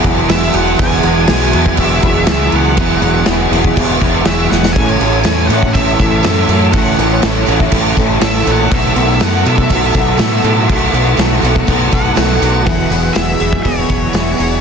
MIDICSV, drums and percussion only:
0, 0, Header, 1, 2, 480
1, 0, Start_track
1, 0, Key_signature, 4, "major"
1, 0, Tempo, 494641
1, 764, Time_signature, 4, 2, 24, 8
1, 14175, End_track
2, 0, Start_track
2, 0, Title_t, "Drums"
2, 42, Note_on_c, 9, 49, 68
2, 43, Note_on_c, 9, 36, 78
2, 139, Note_off_c, 9, 49, 0
2, 140, Note_off_c, 9, 36, 0
2, 285, Note_on_c, 9, 49, 91
2, 290, Note_on_c, 9, 38, 118
2, 382, Note_off_c, 9, 49, 0
2, 387, Note_off_c, 9, 38, 0
2, 521, Note_on_c, 9, 49, 61
2, 618, Note_off_c, 9, 49, 0
2, 766, Note_on_c, 9, 49, 94
2, 770, Note_on_c, 9, 36, 111
2, 863, Note_off_c, 9, 49, 0
2, 867, Note_off_c, 9, 36, 0
2, 1001, Note_on_c, 9, 49, 60
2, 1098, Note_off_c, 9, 49, 0
2, 1237, Note_on_c, 9, 49, 88
2, 1242, Note_on_c, 9, 38, 109
2, 1334, Note_off_c, 9, 49, 0
2, 1339, Note_off_c, 9, 38, 0
2, 1485, Note_on_c, 9, 49, 63
2, 1582, Note_off_c, 9, 49, 0
2, 1610, Note_on_c, 9, 36, 88
2, 1707, Note_off_c, 9, 36, 0
2, 1718, Note_on_c, 9, 49, 78
2, 1731, Note_on_c, 9, 36, 98
2, 1815, Note_off_c, 9, 49, 0
2, 1828, Note_off_c, 9, 36, 0
2, 1965, Note_on_c, 9, 49, 61
2, 1972, Note_on_c, 9, 36, 84
2, 2062, Note_off_c, 9, 49, 0
2, 2069, Note_off_c, 9, 36, 0
2, 2198, Note_on_c, 9, 49, 77
2, 2203, Note_on_c, 9, 38, 116
2, 2295, Note_off_c, 9, 49, 0
2, 2300, Note_off_c, 9, 38, 0
2, 2446, Note_on_c, 9, 49, 58
2, 2543, Note_off_c, 9, 49, 0
2, 2686, Note_on_c, 9, 49, 79
2, 2694, Note_on_c, 9, 36, 110
2, 2783, Note_off_c, 9, 49, 0
2, 2791, Note_off_c, 9, 36, 0
2, 2930, Note_on_c, 9, 49, 59
2, 3027, Note_off_c, 9, 49, 0
2, 3160, Note_on_c, 9, 49, 71
2, 3165, Note_on_c, 9, 38, 110
2, 3257, Note_off_c, 9, 49, 0
2, 3262, Note_off_c, 9, 38, 0
2, 3423, Note_on_c, 9, 49, 61
2, 3520, Note_off_c, 9, 49, 0
2, 3537, Note_on_c, 9, 36, 89
2, 3634, Note_off_c, 9, 36, 0
2, 3656, Note_on_c, 9, 49, 90
2, 3659, Note_on_c, 9, 36, 102
2, 3753, Note_off_c, 9, 49, 0
2, 3756, Note_off_c, 9, 36, 0
2, 3896, Note_on_c, 9, 36, 79
2, 3896, Note_on_c, 9, 49, 67
2, 3993, Note_off_c, 9, 36, 0
2, 3993, Note_off_c, 9, 49, 0
2, 4126, Note_on_c, 9, 49, 84
2, 4130, Note_on_c, 9, 38, 119
2, 4223, Note_off_c, 9, 49, 0
2, 4227, Note_off_c, 9, 38, 0
2, 4381, Note_on_c, 9, 38, 63
2, 4478, Note_off_c, 9, 38, 0
2, 4510, Note_on_c, 9, 38, 102
2, 4607, Note_off_c, 9, 38, 0
2, 4617, Note_on_c, 9, 54, 28
2, 4619, Note_on_c, 9, 36, 115
2, 4619, Note_on_c, 9, 49, 89
2, 4714, Note_off_c, 9, 54, 0
2, 4716, Note_off_c, 9, 36, 0
2, 4716, Note_off_c, 9, 49, 0
2, 4735, Note_on_c, 9, 54, 30
2, 4832, Note_off_c, 9, 54, 0
2, 4851, Note_on_c, 9, 54, 27
2, 4858, Note_on_c, 9, 49, 62
2, 4948, Note_off_c, 9, 54, 0
2, 4955, Note_off_c, 9, 49, 0
2, 4971, Note_on_c, 9, 54, 28
2, 5068, Note_off_c, 9, 54, 0
2, 5079, Note_on_c, 9, 54, 99
2, 5090, Note_on_c, 9, 49, 80
2, 5095, Note_on_c, 9, 38, 113
2, 5176, Note_off_c, 9, 54, 0
2, 5187, Note_off_c, 9, 49, 0
2, 5192, Note_off_c, 9, 38, 0
2, 5210, Note_on_c, 9, 54, 29
2, 5307, Note_off_c, 9, 54, 0
2, 5331, Note_on_c, 9, 54, 71
2, 5339, Note_on_c, 9, 49, 65
2, 5428, Note_off_c, 9, 54, 0
2, 5436, Note_off_c, 9, 49, 0
2, 5459, Note_on_c, 9, 36, 94
2, 5556, Note_off_c, 9, 36, 0
2, 5570, Note_on_c, 9, 54, 74
2, 5580, Note_on_c, 9, 36, 105
2, 5581, Note_on_c, 9, 49, 89
2, 5667, Note_off_c, 9, 54, 0
2, 5677, Note_off_c, 9, 36, 0
2, 5678, Note_off_c, 9, 49, 0
2, 5807, Note_on_c, 9, 54, 74
2, 5818, Note_on_c, 9, 49, 60
2, 5819, Note_on_c, 9, 36, 84
2, 5904, Note_off_c, 9, 54, 0
2, 5915, Note_off_c, 9, 49, 0
2, 5916, Note_off_c, 9, 36, 0
2, 6044, Note_on_c, 9, 54, 95
2, 6057, Note_on_c, 9, 49, 83
2, 6062, Note_on_c, 9, 38, 114
2, 6141, Note_off_c, 9, 54, 0
2, 6154, Note_off_c, 9, 49, 0
2, 6159, Note_off_c, 9, 38, 0
2, 6292, Note_on_c, 9, 54, 75
2, 6297, Note_on_c, 9, 49, 59
2, 6389, Note_off_c, 9, 54, 0
2, 6394, Note_off_c, 9, 49, 0
2, 6529, Note_on_c, 9, 54, 29
2, 6532, Note_on_c, 9, 49, 83
2, 6538, Note_on_c, 9, 36, 113
2, 6626, Note_off_c, 9, 54, 0
2, 6629, Note_off_c, 9, 49, 0
2, 6635, Note_off_c, 9, 36, 0
2, 6651, Note_on_c, 9, 54, 26
2, 6748, Note_off_c, 9, 54, 0
2, 6782, Note_on_c, 9, 49, 55
2, 6782, Note_on_c, 9, 54, 28
2, 6879, Note_off_c, 9, 49, 0
2, 6879, Note_off_c, 9, 54, 0
2, 6899, Note_on_c, 9, 54, 27
2, 6996, Note_off_c, 9, 54, 0
2, 7006, Note_on_c, 9, 54, 95
2, 7012, Note_on_c, 9, 49, 75
2, 7016, Note_on_c, 9, 38, 113
2, 7103, Note_off_c, 9, 54, 0
2, 7109, Note_off_c, 9, 49, 0
2, 7113, Note_off_c, 9, 38, 0
2, 7133, Note_on_c, 9, 54, 28
2, 7230, Note_off_c, 9, 54, 0
2, 7242, Note_on_c, 9, 54, 70
2, 7261, Note_on_c, 9, 49, 61
2, 7339, Note_off_c, 9, 54, 0
2, 7358, Note_off_c, 9, 49, 0
2, 7377, Note_on_c, 9, 36, 93
2, 7474, Note_off_c, 9, 36, 0
2, 7487, Note_on_c, 9, 49, 88
2, 7489, Note_on_c, 9, 54, 73
2, 7494, Note_on_c, 9, 36, 100
2, 7584, Note_off_c, 9, 49, 0
2, 7586, Note_off_c, 9, 54, 0
2, 7591, Note_off_c, 9, 36, 0
2, 7732, Note_on_c, 9, 49, 57
2, 7735, Note_on_c, 9, 36, 80
2, 7737, Note_on_c, 9, 54, 64
2, 7829, Note_off_c, 9, 49, 0
2, 7832, Note_off_c, 9, 36, 0
2, 7834, Note_off_c, 9, 54, 0
2, 7969, Note_on_c, 9, 49, 87
2, 7973, Note_on_c, 9, 54, 92
2, 7974, Note_on_c, 9, 38, 116
2, 8066, Note_off_c, 9, 49, 0
2, 8070, Note_off_c, 9, 54, 0
2, 8071, Note_off_c, 9, 38, 0
2, 8211, Note_on_c, 9, 54, 72
2, 8220, Note_on_c, 9, 49, 64
2, 8308, Note_off_c, 9, 54, 0
2, 8317, Note_off_c, 9, 49, 0
2, 8456, Note_on_c, 9, 49, 84
2, 8458, Note_on_c, 9, 36, 115
2, 8462, Note_on_c, 9, 54, 27
2, 8553, Note_off_c, 9, 49, 0
2, 8555, Note_off_c, 9, 36, 0
2, 8559, Note_off_c, 9, 54, 0
2, 8567, Note_on_c, 9, 54, 27
2, 8665, Note_off_c, 9, 54, 0
2, 8697, Note_on_c, 9, 49, 63
2, 8794, Note_off_c, 9, 49, 0
2, 8802, Note_on_c, 9, 54, 26
2, 8899, Note_off_c, 9, 54, 0
2, 8925, Note_on_c, 9, 54, 89
2, 8932, Note_on_c, 9, 49, 80
2, 8937, Note_on_c, 9, 38, 112
2, 9022, Note_off_c, 9, 54, 0
2, 9029, Note_off_c, 9, 49, 0
2, 9034, Note_off_c, 9, 38, 0
2, 9053, Note_on_c, 9, 54, 29
2, 9150, Note_off_c, 9, 54, 0
2, 9174, Note_on_c, 9, 54, 69
2, 9182, Note_on_c, 9, 49, 67
2, 9271, Note_off_c, 9, 54, 0
2, 9279, Note_off_c, 9, 49, 0
2, 9296, Note_on_c, 9, 36, 96
2, 9393, Note_off_c, 9, 36, 0
2, 9408, Note_on_c, 9, 54, 69
2, 9415, Note_on_c, 9, 49, 91
2, 9416, Note_on_c, 9, 36, 100
2, 9505, Note_off_c, 9, 54, 0
2, 9512, Note_off_c, 9, 49, 0
2, 9514, Note_off_c, 9, 36, 0
2, 9638, Note_on_c, 9, 54, 75
2, 9649, Note_on_c, 9, 49, 64
2, 9654, Note_on_c, 9, 36, 78
2, 9735, Note_off_c, 9, 54, 0
2, 9746, Note_off_c, 9, 49, 0
2, 9751, Note_off_c, 9, 36, 0
2, 9875, Note_on_c, 9, 54, 91
2, 9888, Note_on_c, 9, 49, 84
2, 9893, Note_on_c, 9, 38, 111
2, 9972, Note_off_c, 9, 54, 0
2, 9985, Note_off_c, 9, 49, 0
2, 9990, Note_off_c, 9, 38, 0
2, 10114, Note_on_c, 9, 54, 76
2, 10134, Note_on_c, 9, 49, 62
2, 10211, Note_off_c, 9, 54, 0
2, 10231, Note_off_c, 9, 49, 0
2, 10367, Note_on_c, 9, 54, 29
2, 10378, Note_on_c, 9, 36, 104
2, 10379, Note_on_c, 9, 49, 82
2, 10464, Note_off_c, 9, 54, 0
2, 10475, Note_off_c, 9, 36, 0
2, 10476, Note_off_c, 9, 49, 0
2, 10611, Note_on_c, 9, 54, 29
2, 10617, Note_on_c, 9, 49, 60
2, 10708, Note_off_c, 9, 54, 0
2, 10714, Note_off_c, 9, 49, 0
2, 10729, Note_on_c, 9, 54, 28
2, 10826, Note_off_c, 9, 54, 0
2, 10840, Note_on_c, 9, 54, 102
2, 10859, Note_on_c, 9, 49, 75
2, 10864, Note_on_c, 9, 38, 107
2, 10937, Note_off_c, 9, 54, 0
2, 10956, Note_off_c, 9, 49, 0
2, 10961, Note_off_c, 9, 38, 0
2, 10965, Note_on_c, 9, 54, 31
2, 11062, Note_off_c, 9, 54, 0
2, 11078, Note_on_c, 9, 54, 74
2, 11107, Note_on_c, 9, 49, 59
2, 11175, Note_off_c, 9, 54, 0
2, 11203, Note_on_c, 9, 54, 29
2, 11204, Note_off_c, 9, 49, 0
2, 11217, Note_on_c, 9, 36, 93
2, 11300, Note_off_c, 9, 54, 0
2, 11314, Note_off_c, 9, 36, 0
2, 11324, Note_on_c, 9, 54, 79
2, 11334, Note_on_c, 9, 49, 80
2, 11336, Note_on_c, 9, 36, 102
2, 11421, Note_off_c, 9, 54, 0
2, 11432, Note_off_c, 9, 49, 0
2, 11433, Note_off_c, 9, 36, 0
2, 11449, Note_on_c, 9, 54, 27
2, 11546, Note_off_c, 9, 54, 0
2, 11563, Note_on_c, 9, 54, 70
2, 11572, Note_on_c, 9, 49, 62
2, 11574, Note_on_c, 9, 36, 81
2, 11660, Note_off_c, 9, 54, 0
2, 11669, Note_off_c, 9, 49, 0
2, 11671, Note_off_c, 9, 36, 0
2, 11802, Note_on_c, 9, 54, 93
2, 11808, Note_on_c, 9, 49, 84
2, 11813, Note_on_c, 9, 38, 117
2, 11899, Note_off_c, 9, 54, 0
2, 11905, Note_off_c, 9, 49, 0
2, 11910, Note_off_c, 9, 38, 0
2, 11935, Note_on_c, 9, 54, 31
2, 12032, Note_off_c, 9, 54, 0
2, 12051, Note_on_c, 9, 54, 74
2, 12057, Note_on_c, 9, 49, 62
2, 12148, Note_off_c, 9, 54, 0
2, 12154, Note_off_c, 9, 49, 0
2, 12284, Note_on_c, 9, 54, 24
2, 12290, Note_on_c, 9, 46, 79
2, 12293, Note_on_c, 9, 36, 108
2, 12381, Note_off_c, 9, 54, 0
2, 12387, Note_off_c, 9, 46, 0
2, 12390, Note_off_c, 9, 36, 0
2, 12517, Note_on_c, 9, 54, 63
2, 12534, Note_on_c, 9, 46, 56
2, 12615, Note_off_c, 9, 54, 0
2, 12631, Note_off_c, 9, 46, 0
2, 12640, Note_on_c, 9, 54, 24
2, 12737, Note_off_c, 9, 54, 0
2, 12758, Note_on_c, 9, 54, 93
2, 12767, Note_on_c, 9, 46, 84
2, 12772, Note_on_c, 9, 38, 109
2, 12855, Note_off_c, 9, 54, 0
2, 12864, Note_off_c, 9, 46, 0
2, 12869, Note_off_c, 9, 38, 0
2, 12888, Note_on_c, 9, 54, 68
2, 12985, Note_off_c, 9, 54, 0
2, 13004, Note_on_c, 9, 46, 62
2, 13101, Note_off_c, 9, 46, 0
2, 13126, Note_on_c, 9, 36, 87
2, 13223, Note_off_c, 9, 36, 0
2, 13246, Note_on_c, 9, 46, 85
2, 13247, Note_on_c, 9, 36, 98
2, 13343, Note_off_c, 9, 46, 0
2, 13344, Note_off_c, 9, 36, 0
2, 13478, Note_on_c, 9, 54, 64
2, 13486, Note_on_c, 9, 36, 75
2, 13487, Note_on_c, 9, 46, 57
2, 13575, Note_off_c, 9, 54, 0
2, 13583, Note_off_c, 9, 36, 0
2, 13584, Note_off_c, 9, 46, 0
2, 13712, Note_on_c, 9, 54, 93
2, 13726, Note_on_c, 9, 46, 81
2, 13731, Note_on_c, 9, 38, 103
2, 13809, Note_off_c, 9, 54, 0
2, 13823, Note_off_c, 9, 46, 0
2, 13828, Note_off_c, 9, 38, 0
2, 13955, Note_on_c, 9, 54, 73
2, 13977, Note_on_c, 9, 46, 58
2, 14052, Note_off_c, 9, 54, 0
2, 14074, Note_off_c, 9, 46, 0
2, 14079, Note_on_c, 9, 54, 29
2, 14175, Note_off_c, 9, 54, 0
2, 14175, End_track
0, 0, End_of_file